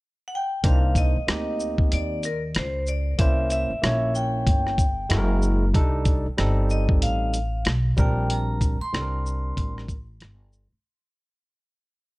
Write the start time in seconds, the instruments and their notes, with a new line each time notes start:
0.28 vibraphone F#5
0.35 vibraphone G5
0.63 upright bass C2, tine electric piano A#3 D4 D#4 C5, vibraphone F5, kick, closed hi-hat
0.95 vibraphone D#5, kick, closed hi-hat, shaker
1.16 muted upright bass stroke
1.27 upright bass D2, tine electric piano A#3 C4 D#4 G4, cross-stick, closed hi-hat
1.60 shaker
1.78 kick
1.92 upright bass D#2, vibraphone D5, closed hi-hat
2.23 vibraphone A#4, closed hi-hat, shaker
2.55 upright bass C#2, vibraphone C5, cross-stick, closed hi-hat
2.87 vibraphone D5, shaker
3.18 upright bass C2, tine electric piano A#3 C#4 E4 C5, vibraphone E5, kick, closed hi-hat
3.50 vibraphone E5, closed hi-hat, shaker
3.70 muted upright bass stroke
3.82 upright bass A#1, tine electric piano A#3 C#4 D#4 C#5, cross-stick, closed hi-hat
3.90 tine electric piano E4
4.15 vibraphone G5, shaker
4.47 upright bass G1, kick, closed hi-hat
4.67 cross-stick
4.78 kick, closed hi-hat, shaker
5.09 upright bass F#1, tine electric piano G#3 E4 F#4 A4, cross-stick, closed hi-hat
5.18 tine electric piano A#4
5.42 shaker
5.74 upright bass C2, tine electric piano G3 D4 D#4 A4, kick, closed hi-hat
6.05 kick, closed hi-hat, shaker
6.26 muted upright bass stroke
6.38 upright bass G1, tine electric piano G3 C4 D#4 A4, cross-stick, closed hi-hat
6.70 vibraphone D#5, shaker
6.89 kick
7.02 upright bass A1, vibraphone F5, closed hi-hat
7.34 closed hi-hat, shaker
7.65 upright bass B1, cross-stick, closed hi-hat
7.97 upright bass A#1, tine electric piano G3 C4 D4 A#4, vibraphone G5, kick, shaker
8.30 vibraphone A#5, closed hi-hat
8.61 kick, closed hi-hat, shaker
8.80 vibraphone C6, muted upright bass stroke
8.92 upright bass C2, tine electric piano G3 C4 D4 A4, cross-stick, closed hi-hat
9.01 tine electric piano A#4
9.26 shaker
9.57 upright bass A1, kick, closed hi-hat
9.78 cross-stick
9.88 kick, closed hi-hat, shaker
10.20 upright bass G1, cross-stick, closed hi-hat
10.53 shaker
10.72 muted upright bass stroke